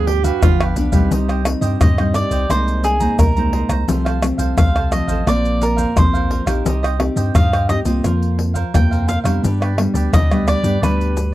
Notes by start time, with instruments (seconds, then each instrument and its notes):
Already playing: sub bass D2, nylon-string guitar G2 F3 B3 D4
0.07 tenor saxophone G4, muted cavaquinho stroke, pandeiro
0.24 tenor saxophone F#4, cavaquinho G4 B4 F5, pandeiro, maracas, surdo
0.42 sub bass G1, nylon-string guitar D3 F3 B3 D4, tenor saxophone F4, pandeiro, tamborim, maracas, surdo
0.60 cavaquinho G4 B4 F5, pandeiro, tamborim, maracas
0.75 sub bass B1, nylon-string guitar F3 B3 D4, cavaquinho D4 G4 B4 F5, pandeiro, maracas
0.92 nylon-string guitar G3 C4 D#4, cavaquinho G4 B4 F5, pandeiro, maracas, surdo
1.11 sub bass C2, nylon-string guitar C3, cavaquinho D#4 G4 C5 D#5, pandeiro, maracas, surdo
1.28 cavaquinho G4 C5 D#5, pandeiro, tamborim, maracas
1.45 nylon-string guitar G3 C4 D#4, muted cavaquinho stroke, pandeiro, tamborim, maracas
1.61 sub bass G2, cavaquinho G4 C5 D#5, pandeiro, maracas, surdo
1.80 sub bass G2, nylon-string guitar G2, cavaquinho D#4 G4 C5 D#5, pandeiro, tamborim, maracas, surdo
1.98 nylon-string guitar G3 C4 D#4, cavaquinho G4 C5 D#5, pandeiro, tamborim, maracas
2.14 cavaquinho D5, pandeiro, tamborim, maracas, surdo
2.31 sub bass C2, cavaquinho G4 C5 D#5, pandeiro, maracas, surdo
2.49 sub bass C2, nylon-string guitar C3 G#3 A#3 D#4, cavaquinho G#4 C5 A#5, pandeiro, tamborim, maracas, surdo
2.68 pandeiro, maracas
2.83 cavaquinho G#4, muted cavaquinho stroke, pandeiro, maracas
3.00 nylon-string guitar G#3 A#3 D#4, cavaquinho C5 A#5, pandeiro, maracas, surdo
3.19 sub bass C2, nylon-string guitar C3, cavaquinho A#4, pandeiro, tamborim, maracas, surdo
3.36 nylon-string guitar G#3 A#3 D#4, cavaquinho C5 A#5, pandeiro, maracas
3.52 cavaquinho G#4 C5 A#5, pandeiro
3.69 sub bass C2, cavaquinho C5 A#5, pandeiro, tamborim, maracas, surdo
3.88 sub bass C2, nylon-string guitar C3 F3 A3 C4, cavaquinho F4 A4 C5 F5, pandeiro, maracas, surdo
4.05 cavaquinho A4 C5 F5, pandeiro, tamborim, maracas
4.22 nylon-string guitar F3 A3 C4, muted cavaquinho stroke, pandeiro, tamborim, maracas
4.38 sub bass C2, cavaquinho A4 C5 F5, pandeiro, maracas, surdo
4.57 sub bass C2, nylon-string guitar C3, cavaquinho F4 A4 C5 F5, pandeiro, tamborim, maracas, surdo
4.75 cavaquinho A4 C5 F5, pandeiro, tamborim, maracas
4.91 nylon-string guitar F3 A3 C4, cavaquinho D#5, pandeiro, tamborim, maracas
5.07 sub bass A1, cavaquinho A4 C5 F5, pandeiro, maracas, surdo
5.26 sub bass A#1, nylon-string guitar A#2 F3 A#3 C4, cavaquinho F4 A#4 C5 D5 F5, pandeiro, tamborim, maracas, surdo
5.45 pandeiro, maracas
5.61 cavaquinho A#4, muted cavaquinho stroke, pandeiro, maracas
5.76 cavaquinho A#4 C5 F5, pandeiro, maracas, surdo
5.96 sub bass A#1, nylon-string guitar F2 F3 A#3 C4, cavaquinho C5, pandeiro, tamborim, maracas, surdo
6.13 cavaquinho A#4 C5 F5, pandeiro, maracas
6.30 cavaquinho F4 A#4 C5 F5, pandeiro
6.46 sub bass A#1, nylon-string guitar C4 D#4 G4, cavaquinho A#4 C5 F5, pandeiro, tamborim, maracas, surdo
6.65 sub bass C2, nylon-string guitar C3, cavaquinho D#4 G4 C5 D#5, pandeiro, maracas, surdo
6.83 cavaquinho G4 C5 D#5, pandeiro, tamborim, maracas
6.99 nylon-string guitar C4 D#4 G4, pandeiro, tamborim
7.16 sub bass G2, cavaquinho G4 C5 D#5, pandeiro, maracas, surdo
7.34 sub bass G2, nylon-string guitar G2, cavaquinho D#4 G4 C5 D#5 F5, pandeiro, tamborim, maracas, surdo
7.52 cavaquinho G4 C5 D#5, pandeiro, tamborim, maracas
7.69 nylon-string guitar C4 D#4 G4, cavaquinho D#5, pandeiro, tamborim, maracas, surdo
7.85 sub bass C2, nylon-string guitar A#3 C4 F4, cavaquinho G4 C5 D#5, pandeiro, maracas, surdo
8.04 sub bass F2, nylon-string guitar F3, cavaquinho F4 A#4 C5 F5, pandeiro, tamborim, maracas, surdo
8.23 pandeiro, maracas
8.38 muted cavaquinho stroke, pandeiro
8.54 cavaquinho A#4 C5 F5, pandeiro, maracas, surdo
8.74 sub bass F2, nylon-string guitar C3 A#3 C4 F4, cavaquinho G5, pandeiro, tamborim, maracas, surdo
8.91 cavaquinho A#4 C5 F5, pandeiro, maracas
9.07 cavaquinho F4 A#4 C5 F5, pandeiro, maracas
9.24 sub bass F2, nylon-string guitar G3 B3 D4, cavaquinho A#4 C5 F5, pandeiro, tamborim, maracas, surdo
9.43 sub bass G2, nylon-string guitar G2, cavaquinho D4 G4 B4 D5, pandeiro, maracas, surdo
9.60 cavaquinho G4 B4 D5, pandeiro, tamborim, maracas
9.77 nylon-string guitar G3 B3 D4, muted cavaquinho stroke, pandeiro, tamborim
9.94 sub bass D2, cavaquinho G4 B4 D5, pandeiro, maracas, surdo
10.12 sub bass D2, nylon-string guitar D3, cavaquinho D4 G4 B4 D5 D#5, pandeiro, tamborim, maracas, surdo
10.30 nylon-string guitar G3 B3 D4, cavaquinho G4 B4 D5, pandeiro, tamborim, maracas
10.48 cavaquinho D5, pandeiro, tamborim, maracas, surdo
10.63 sub bass G2, nylon-string guitar G3 B3 D4, cavaquinho G4 B4 D5, pandeiro, maracas, surdo
10.82 sub bass D2, nylon-string guitar G2 G3 B3 D4, cavaquinho D4 G4 B4 D5, pandeiro, tamborim, maracas, surdo
11.01 pandeiro, maracas
11.16 muted cavaquinho stroke, pandeiro, maracas